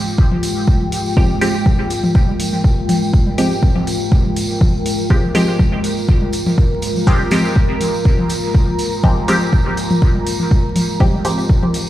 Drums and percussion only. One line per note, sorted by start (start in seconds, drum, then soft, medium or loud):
0.07 tambourine medium
0.18 kick loud
0.18 tambourine soft
0.31 high tom medium
0.43 open hi-hat medium
0.43 tambourine loud
0.56 tambourine medium
0.67 kick loud
0.67 tambourine soft
0.81 high tom soft
0.92 open hi-hat medium
0.92 tambourine medium
1.06 tambourine medium
1.17 kick loud
1.17 high tom medium
1.41 open hi-hat medium
1.41 tambourine medium
1.54 tambourine medium
1.66 kick loud
1.66 high tom soft
1.66 tambourine soft
1.90 open hi-hat medium
1.90 tambourine medium
2.04 high tom medium
2.04 tambourine soft
2.15 kick loud
2.15 tambourine soft
2.28 low conga medium
2.40 open hi-hat medium
2.40 tambourine medium
2.53 high tom soft
2.53 tambourine medium
2.64 kick loud
2.64 tambourine soft
2.89 open hi-hat medium
2.89 high tom medium
2.89 tambourine medium
3.02 tambourine medium
3.13 kick loud
3.13 tambourine soft
3.26 low conga medium
3.38 open hi-hat medium
3.38 high tom soft
3.38 tambourine medium
3.51 tambourine medium
3.62 kick loud
3.62 tambourine soft
3.76 high tom medium
3.87 open hi-hat medium
3.87 tambourine medium
4.00 tambourine medium
4.12 kick loud
4.12 tambourine soft
4.25 high tom soft
4.36 open hi-hat medium
4.36 tambourine loud
4.49 tambourine medium
4.61 kick loud
4.61 high tom medium
4.61 tambourine soft
4.86 open hi-hat medium
4.86 tambourine medium
4.99 tambourine medium
5.10 kick loud
5.10 tambourine soft
5.23 high tom soft
5.35 open hi-hat medium
5.35 tambourine medium
5.48 tambourine soft
5.59 kick loud
5.59 high tom medium
5.59 tambourine soft
5.84 open hi-hat medium
5.84 tambourine medium
5.97 tambourine soft
6.08 kick loud
6.08 high tom soft
6.08 tambourine soft
6.22 low conga medium
6.33 open hi-hat medium
6.33 tambourine medium
6.46 high tom medium
6.46 tambourine medium
6.58 kick loud
6.58 tambourine soft
6.82 open hi-hat medium
6.82 tambourine medium
6.95 high tom soft
6.95 tambourine medium
7.07 kick loud
7.20 low conga medium
7.31 open hi-hat medium
7.31 high tom medium
7.31 tambourine medium
7.45 tambourine medium
7.56 kick loud
7.56 tambourine soft
7.81 open hi-hat medium
7.81 high tom soft
7.81 tambourine medium
7.94 tambourine medium
8.05 kick loud
8.05 tambourine soft
8.18 high tom medium
8.29 open hi-hat medium
8.29 tambourine medium
8.43 tambourine soft
8.54 kick loud
8.54 tambourine soft
8.68 high tom soft
8.78 open hi-hat medium
8.78 tambourine medium
8.91 tambourine medium
9.03 kick loud
9.03 high tom medium
9.03 tambourine soft
9.28 open hi-hat medium
9.28 tambourine medium
9.41 tambourine soft
9.53 kick medium
9.53 high tom soft
9.53 tambourine soft
9.77 open hi-hat medium
9.77 tambourine medium
9.90 high tom medium
9.90 tambourine medium
10.02 kick loud
10.02 tambourine soft
10.15 low conga medium
10.26 open hi-hat medium
10.26 tambourine medium
10.39 high tom soft
10.39 tambourine soft
10.51 kick loud
10.51 tambourine soft
10.76 open hi-hat medium
10.76 high tom medium
10.76 tambourine medium
10.89 tambourine medium
11.00 kick loud
11.00 tambourine soft
11.13 low conga medium
11.25 open hi-hat medium
11.25 high tom soft
11.25 tambourine medium
11.38 tambourine medium
11.49 kick loud
11.49 tambourine soft
11.63 high tom medium
11.74 open hi-hat medium
11.74 tambourine medium